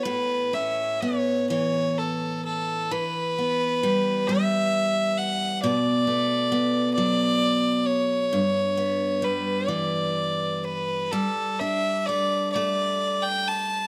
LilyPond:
<<
  \new Staff \with { instrumentName = "Fiddle" } { \time 6/8 \key a \mixolydian \tempo 4. = 43 b'8 e''8 cis''8 cis''8 a'8 a'8 | b'4. e''4 fis''8 | d''4. d''4 cis''8~ | cis''4 b'8 d''4 b'8 |
a'8 e''8 d''8 d''8. g''16 a''8 | }
  \new Staff \with { instrumentName = "Steel-string acoustic guitar" } { \clef bass \time 6/8 \key a \mixolydian a,8 cis'8 b8 e4. | e8 b8 g8 g4. | b,8 a8 b8 fis4. | g,8 b8 g8 e4. |
g8 d'8 a8 a4. | }
>>